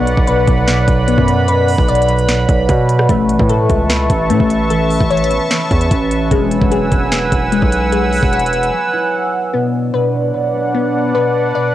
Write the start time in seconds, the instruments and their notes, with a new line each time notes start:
Already playing: 808-style bass B1, harp B2 F#3 B3, synth pluck B3 B4 D5, analog synth pad B4 D5 F#5 B5
0.07 closed hi-hat
0.17 808-style bass B1, kick
0.27 harp B2, synth pluck B4, closed hi-hat
0.47 808-style bass B1, harp F#3, kick, closed hi-hat
0.68 harp B2, snare, closed hi-hat
0.88 808-style bass B1, harp B3, kick, closed hi-hat
1.08 synth pluck B3, closed hi-hat
1.18 808-style bass F#2, kick
1.28 closed hi-hat
1.48 harp B2, synth pluck B4, closed hi-hat
1.68 open hi-hat
1.78 808-style bass B1, kick
1.88 harp B2, synth pluck D5, closed hi-hat
1.95 closed hi-hat
2.02 closed hi-hat
2.08 harp F#3, closed hi-hat
2.19 closed hi-hat
2.29 harp B2, snare, closed hi-hat
2.49 808-style bass B1, harp B3, kick, closed hi-hat
2.69 808-style bass B2, kick, closed hi-hat
2.89 closed hi-hat
2.99 cross-stick
3.09 808-style bass A1, harp E3, synth pluck A3, analog synth pad E5 A5 C#6, kick, closed hi-hat
3.29 closed hi-hat
3.39 808-style bass A2, kick
3.49 harp E3, synth pluck A4, closed hi-hat
3.70 808-style bass C#2, harp B3, kick, closed hi-hat
3.90 harp E3, snare, closed hi-hat
4.09 808-style bass A1, harp C#4, kick, closed hi-hat
4.30 808-style bass A2, synth pluck A3, closed hi-hat
4.40 808-style bass A1, kick
4.50 closed hi-hat
4.70 harp E3, synth pluck A4, closed hi-hat
4.90 open hi-hat
5.00 808-style bass A1, kick
5.10 harp E3, synth pluck C#5, closed hi-hat
5.17 closed hi-hat
5.24 closed hi-hat
5.30 harp B3, closed hi-hat
5.51 harp E3, snare, closed hi-hat
5.71 808-style bass E2, harp C#4, kick, closed hi-hat
5.81 closed hi-hat
5.91 808-style bass A1, kick, closed hi-hat
6.11 closed hi-hat
6.31 808-style bass E1, harp F#3, synth pluck G#3, analog synth pad B4 F#5 G#5 E6, kick, closed hi-hat
6.51 closed hi-hat
6.62 808-style bass E1, kick
6.71 harp F#3, synth pluck G#4, closed hi-hat
6.92 808-style bass E1, harp B3, kick, closed hi-hat
7.12 harp F#3, snare, closed hi-hat
7.32 808-style bass E1, harp E4, kick, closed hi-hat
7.52 synth pluck G#3, closed hi-hat
7.62 808-style bass B1, kick
7.72 closed hi-hat
7.92 harp F#3, synth pluck G#4, closed hi-hat
8.13 open hi-hat
8.23 808-style bass E1, kick
8.32 harp F#3, synth pluck F#5, closed hi-hat
8.39 closed hi-hat
8.46 closed hi-hat
8.53 harp B3, closed hi-hat
8.63 closed hi-hat
8.73 harp F#3
8.93 harp E4
9.53 harp B2, synth pluck B3, analog synth pad D4 B4 D5 F#5
9.94 harp B2, synth pluck B4
10.14 harp F#3
10.34 harp B2
10.54 harp B3
10.75 synth pluck B3
11.15 harp B2, synth pluck B4
11.55 harp B2, synth pluck D5